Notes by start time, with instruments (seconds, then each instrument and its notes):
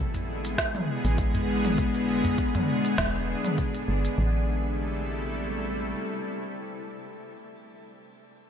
Already playing: fm bass A1, synth drone D3 G#3 B3 E4 G#4
0.14 closed hi-hat, udu, cabasa
0.45 closed hi-hat, cabasa
0.58 kick, snare, closed hi-hat, cabasa
0.75 mid tom, cabasa
1.05 fm bass A1, closed hi-hat, cabasa
1.18 kick, closed hi-hat, cabasa
1.34 closed hi-hat, udu, cabasa
1.65 closed hi-hat, mid tom, cabasa
1.78 synth drone D4, kick, closed hi-hat, cabasa
1.95 closed hi-hat, cabasa
2.24 closed hi-hat, udu, cabasa
2.38 kick, closed hi-hat, cabasa
2.55 closed hi-hat, mid tom, udu, cabasa
2.85 closed hi-hat, cabasa
2.98 fm bass E1, kick, snare, closed hi-hat, cabasa
3.15 cabasa
3.45 closed hi-hat, mid tom, cabasa
3.58 kick, closed hi-hat, cabasa
3.75 closed hi-hat, cabasa
3.88 fm bass G1
4.05 closed hi-hat, cabasa
4.18 fm bass A1, synth drone C3 G3 A3 E4 A4